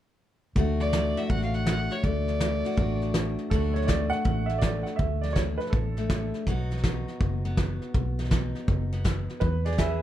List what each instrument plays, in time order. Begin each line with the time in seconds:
0.55 fingered electric bass D2, steel-string acoustic guitar D3 F#3 A3 D4 F#4, kick, snare
0.80 steel-string acoustic guitar D4, fiddle D5, snare
0.93 steel-string acoustic guitar F#3, snare, hi-hat pedal
1.17 steel-string acoustic guitar F#4, fiddle E5, snare
1.30 fingered electric bass A1, steel-string acoustic guitar A2 D4, fiddle F#5, kick, snare
1.42 fiddle F5, snare
1.54 fiddle F#5, snare
1.66 steel-string acoustic guitar F#3, snare, hi-hat pedal
1.91 fiddle C#5, snare
2.03 fingered electric bass D2, steel-string acoustic guitar D3 A3, fiddle D5, kick, snare
2.28 steel-string acoustic guitar D4, snare
2.40 steel-string acoustic guitar F#3, snare, hi-hat pedal
2.64 steel-string acoustic guitar F#4, snare
2.77 fingered electric bass A1, steel-string acoustic guitar A2 D4, kick, snare
3.02 snare
3.14 steel-string acoustic guitar F#3, snare, hi-hat pedal
3.39 snare
3.50 fingered electric bass D2, steel-string acoustic guitar D3 F#3 A3 D4 F#4, upright piano A4, kick, snare
3.74 steel-string acoustic guitar D4, upright piano C#5, snare
3.82 upright piano C#5, snare
3.86 steel-string acoustic guitar F#3, upright piano D5, kick, snare, hi-hat pedal
4.10 upright piano F#5, snare
4.25 fingered electric bass A1, steel-string acoustic guitar A2, kick, snare
4.46 steel-string acoustic guitar A3, upright piano E5, snare
4.58 steel-string acoustic guitar F#3, upright piano D5
4.62 kick, snare, hi-hat pedal
4.83 upright piano F#5, snare
4.96 fingered electric bass D2, steel-string acoustic guitar D3, upright piano E5, kick, snare
5.21 steel-string acoustic guitar D4, upright piano D5, snare
5.30 upright piano C#5, snare
5.36 steel-string acoustic guitar F#3, kick, snare, hi-hat pedal
5.58 upright piano B4, snare
5.67 upright piano A4, snare
5.73 fingered electric bass A1, steel-string acoustic guitar A2, kick, snare
5.97 steel-string acoustic guitar A3, snare
6.10 steel-string acoustic guitar F#3, kick, snare, hi-hat pedal
6.34 snare
6.46 fingered electric bass B1, steel-string acoustic guitar B2 F#3 B3 D#4 F#4, kick, snare
6.71 steel-string acoustic guitar D#4, snare
6.77 snare
6.84 steel-string acoustic guitar F#3, kick, snare, hi-hat pedal
7.08 snare
7.21 fingered electric bass F#1, steel-string acoustic guitar F#2, kick, snare
7.45 steel-string acoustic guitar B3, snare
7.57 steel-string acoustic guitar F#3, kick, snare, hi-hat pedal
7.82 snare
7.94 fingered electric bass B1, steel-string acoustic guitar B2, kick, snare
8.19 steel-string acoustic guitar D#4, snare
8.25 snare
8.31 steel-string acoustic guitar F#3, kick, snare, hi-hat pedal
8.55 snare
8.68 fingered electric bass F#1, steel-string acoustic guitar F#2, kick, snare
8.93 steel-string acoustic guitar B3, snare
9.04 steel-string acoustic guitar F#3, kick, snare, hi-hat pedal
9.29 snare
9.40 fingered electric bass E2, steel-string acoustic guitar E3, upright piano B4, kick, snare
9.65 steel-string acoustic guitar G#4, upright piano D5, snare
9.72 snare
9.78 steel-string acoustic guitar B3, pedal steel guitar G#4 B4 E5, upright piano E5, kick, snare, hi-hat pedal